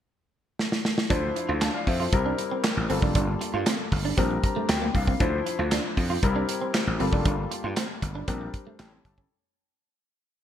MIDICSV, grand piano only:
0, 0, Header, 1, 2, 480
1, 0, Start_track
1, 0, Key_signature, -1, "minor"
1, 0, Tempo, 512821
1, 1032, Time_signature, 4, 2, 24, 8
1, 9767, End_track
2, 0, Start_track
2, 0, Title_t, "Grand piano"
2, 0, Program_c, 0, 0
2, 1025, Note_on_c, 0, 53, 81
2, 1030, Note_on_c, 0, 62, 70
2, 1035, Note_on_c, 0, 64, 72
2, 1039, Note_on_c, 0, 72, 89
2, 1506, Note_off_c, 0, 72, 0
2, 1513, Note_on_c, 0, 81, 65
2, 1519, Note_on_c, 0, 77, 57
2, 1618, Note_off_c, 0, 77, 0
2, 1626, Note_off_c, 0, 81, 0
2, 1632, Note_on_c, 0, 77, 71
2, 1636, Note_on_c, 0, 74, 57
2, 1746, Note_off_c, 0, 77, 0
2, 1748, Note_off_c, 0, 74, 0
2, 1751, Note_on_c, 0, 76, 61
2, 1756, Note_on_c, 0, 72, 60
2, 1857, Note_off_c, 0, 72, 0
2, 1865, Note_off_c, 0, 76, 0
2, 1872, Note_on_c, 0, 72, 59
2, 1876, Note_on_c, 0, 69, 51
2, 1969, Note_off_c, 0, 53, 0
2, 1972, Note_off_c, 0, 62, 0
2, 1974, Note_off_c, 0, 64, 0
2, 1989, Note_on_c, 0, 55, 70
2, 1992, Note_on_c, 0, 60, 68
2, 1994, Note_on_c, 0, 64, 65
2, 1997, Note_on_c, 0, 70, 83
2, 2100, Note_off_c, 0, 72, 0
2, 2102, Note_off_c, 0, 69, 0
2, 2691, Note_off_c, 0, 55, 0
2, 2705, Note_on_c, 0, 55, 69
2, 2710, Note_on_c, 0, 57, 51
2, 2712, Note_off_c, 0, 60, 0
2, 2713, Note_off_c, 0, 64, 0
2, 2714, Note_off_c, 0, 70, 0
2, 2715, Note_on_c, 0, 65, 67
2, 2719, Note_on_c, 0, 69, 78
2, 2767, Note_on_c, 0, 58, 63
2, 2768, Note_off_c, 0, 57, 0
2, 3884, Note_off_c, 0, 55, 0
2, 3889, Note_off_c, 0, 65, 0
2, 3892, Note_off_c, 0, 69, 0
2, 3903, Note_on_c, 0, 55, 73
2, 3908, Note_on_c, 0, 60, 59
2, 3913, Note_on_c, 0, 62, 65
2, 3916, Note_off_c, 0, 58, 0
2, 3918, Note_on_c, 0, 70, 77
2, 4150, Note_on_c, 0, 82, 77
2, 4374, Note_off_c, 0, 82, 0
2, 4391, Note_on_c, 0, 79, 78
2, 4615, Note_off_c, 0, 79, 0
2, 4631, Note_on_c, 0, 77, 70
2, 4848, Note_off_c, 0, 55, 0
2, 4851, Note_off_c, 0, 60, 0
2, 4853, Note_off_c, 0, 62, 0
2, 4855, Note_off_c, 0, 77, 0
2, 4856, Note_off_c, 0, 70, 0
2, 4865, Note_on_c, 0, 53, 80
2, 4869, Note_on_c, 0, 62, 76
2, 4875, Note_on_c, 0, 64, 74
2, 4880, Note_on_c, 0, 72, 87
2, 5809, Note_off_c, 0, 53, 0
2, 5811, Note_off_c, 0, 62, 0
2, 5814, Note_off_c, 0, 64, 0
2, 5817, Note_off_c, 0, 72, 0
2, 5828, Note_on_c, 0, 55, 72
2, 5831, Note_on_c, 0, 60, 68
2, 5834, Note_on_c, 0, 64, 67
2, 5835, Note_on_c, 0, 70, 82
2, 6527, Note_off_c, 0, 55, 0
2, 6541, Note_on_c, 0, 55, 70
2, 6546, Note_on_c, 0, 58, 65
2, 6551, Note_on_c, 0, 65, 70
2, 6552, Note_off_c, 0, 60, 0
2, 6553, Note_off_c, 0, 64, 0
2, 6554, Note_off_c, 0, 70, 0
2, 6556, Note_on_c, 0, 69, 80
2, 7722, Note_off_c, 0, 55, 0
2, 7725, Note_off_c, 0, 58, 0
2, 7727, Note_off_c, 0, 65, 0
2, 7730, Note_off_c, 0, 69, 0
2, 7746, Note_on_c, 0, 55, 71
2, 7748, Note_on_c, 0, 60, 61
2, 7750, Note_on_c, 0, 62, 64
2, 7753, Note_on_c, 0, 70, 71
2, 8213, Note_off_c, 0, 55, 0
2, 8227, Note_on_c, 0, 55, 77
2, 8230, Note_off_c, 0, 60, 0
2, 8230, Note_on_c, 0, 58, 55
2, 8231, Note_off_c, 0, 62, 0
2, 8231, Note_on_c, 0, 64, 65
2, 8231, Note_on_c, 0, 79, 71
2, 8232, Note_off_c, 0, 70, 0
2, 8235, Note_on_c, 0, 69, 83
2, 8287, Note_on_c, 0, 61, 70
2, 8288, Note_off_c, 0, 58, 0
2, 8455, Note_off_c, 0, 79, 0
2, 8471, Note_on_c, 0, 81, 74
2, 8694, Note_off_c, 0, 81, 0
2, 8710, Note_off_c, 0, 55, 0
2, 8712, Note_off_c, 0, 64, 0
2, 8713, Note_off_c, 0, 69, 0
2, 8740, Note_off_c, 0, 61, 0
2, 9767, End_track
0, 0, End_of_file